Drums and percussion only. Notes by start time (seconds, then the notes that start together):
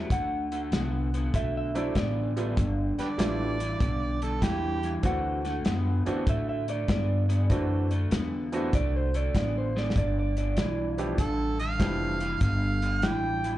0.10 kick, closed hi-hat
0.52 closed hi-hat
0.72 snare, closed hi-hat
1.14 closed hi-hat
1.34 kick, closed hi-hat
1.75 closed hi-hat
1.95 kick, snare, closed hi-hat
2.37 closed hi-hat
2.57 kick, closed hi-hat
2.99 snare, closed hi-hat
3.19 snare, closed hi-hat
3.60 closed hi-hat
3.80 kick, closed hi-hat
4.22 closed hi-hat
4.42 kick, snare, closed hi-hat
4.83 closed hi-hat
5.03 kick, closed hi-hat
5.45 snare, closed hi-hat
5.65 snare, closed hi-hat
6.06 closed hi-hat
6.27 kick, closed hi-hat
6.68 closed hi-hat
6.88 kick, snare, closed hi-hat
7.30 closed hi-hat
7.50 kick, closed hi-hat
7.91 closed hi-hat
8.11 snare, closed hi-hat
8.53 closed hi-hat
8.73 kick, closed hi-hat
9.14 closed hi-hat
9.35 kick, snare, closed hi-hat
9.77 snare
9.90 snare
9.96 kick, closed hi-hat
10.37 closed hi-hat
10.57 snare, closed hi-hat
10.98 closed hi-hat
11.18 kick, closed hi-hat
11.59 closed hi-hat
11.80 kick, snare, closed hi-hat
12.20 closed hi-hat
12.41 kick, closed hi-hat
12.82 closed hi-hat
13.02 snare, closed hi-hat
13.44 closed hi-hat